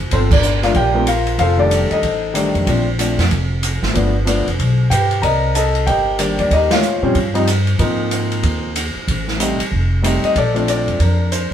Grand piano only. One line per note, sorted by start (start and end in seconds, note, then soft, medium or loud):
0.13 0.31 C4 medium
0.13 0.31 F4 medium
0.13 0.30 A4 medium
0.13 0.18 C5 medium
0.32 0.62 D4 medium
0.32 0.62 A#4 medium
0.32 0.65 D5 medium
0.63 0.74 F3 medium
0.63 0.74 A3 medium
0.63 0.74 A#3 medium
0.63 0.74 D4 medium
0.63 0.75 F4 medium
0.63 0.76 F5 medium
0.76 1.06 G4 medium
0.76 1.06 A#4 medium
0.76 1.06 D5 medium
0.76 1.05 G5 medium
0.94 1.05 F3 medium
0.94 1.05 A3 medium
0.94 1.05 A#3 medium
0.94 1.06 C4 medium
1.08 1.38 F4 medium
1.08 1.38 A#4 medium
1.08 1.38 F5 medium
1.39 1.59 F4 medium
1.39 1.59 A4 medium
1.39 1.59 C5 medium
1.39 1.60 F5 loud
1.57 2.00 D#3 medium
1.57 2.00 G3 medium
1.57 2.00 A3 medium
1.57 2.00 D4 medium
1.57 1.90 A4 medium
1.57 1.89 D5 medium
1.92 2.52 D#4 soft
1.92 2.52 A4 medium
1.92 2.51 D#5 medium
2.34 2.66 D#3 medium
2.34 2.66 G3 medium
2.34 2.66 A3 medium
2.34 2.67 D4 medium
2.67 2.85 F3 medium
2.67 2.85 A3 medium
2.67 2.85 C4 medium
2.67 2.86 D4 medium
2.99 3.17 F3 soft
2.99 3.17 A3 soft
2.99 3.17 C4 soft
2.99 3.17 D4 medium
3.94 4.12 F3 medium
3.94 4.13 A3 medium
3.94 4.13 B3 medium
3.94 4.13 D4 medium
4.25 4.44 F3 medium
4.25 4.44 A3 medium
4.25 4.45 B3 medium
4.25 4.45 D4 medium
4.90 5.22 G4 medium
4.90 5.22 B4 medium
4.90 5.20 G5 medium
5.22 5.53 A#4 medium
5.22 5.53 D5 medium
5.22 5.53 D#5 medium
5.22 5.56 A#5 medium
5.55 5.86 A4 medium
5.55 5.86 D#5 medium
5.55 5.85 A5 medium
5.87 6.17 G4 medium
5.87 6.17 A#4 medium
5.87 6.18 D#5 medium
5.87 6.20 G5 medium
6.19 6.51 D#3 soft
6.19 6.51 G3 soft
6.19 6.51 A#3 soft
6.19 6.40 D4 medium
6.19 6.38 D5 medium
6.40 6.52 D4 medium
6.40 6.51 D5 medium
6.53 6.72 D#4 medium
6.53 6.71 G4 medium
6.53 6.71 A#4 medium
6.53 6.71 D#5 medium
6.72 7.33 F4 medium
6.72 7.33 C#5 medium
6.72 7.32 F5 medium
7.03 7.14 F3 medium
7.03 7.14 G3 medium
7.03 7.14 C4 medium
7.03 7.14 C#4 medium
7.34 7.46 F3 medium
7.34 7.46 G3 medium
7.34 7.46 C4 medium
7.34 7.46 D#4 medium
7.79 8.68 F3 medium
7.79 8.68 A#3 medium
7.79 8.68 C4 medium
7.79 8.68 D#4 medium
9.39 9.57 G3 medium
9.39 9.58 A3 medium
9.39 9.58 C4 soft
9.39 9.58 D#4 medium
10.02 10.35 G3 medium
10.02 10.35 A3 medium
10.02 10.35 C4 medium
10.02 10.36 D#4 medium
10.25 10.35 D#5 medium
10.38 10.97 A4 medium
10.38 10.66 D5 medium
10.54 10.97 F3 medium
10.54 10.97 A3 medium
10.54 10.97 C4 soft
10.54 10.97 D4 medium
10.69 10.98 D5 medium
11.01 11.53 D4 soft
11.01 11.30 A#4 medium
11.32 11.50 C5 medium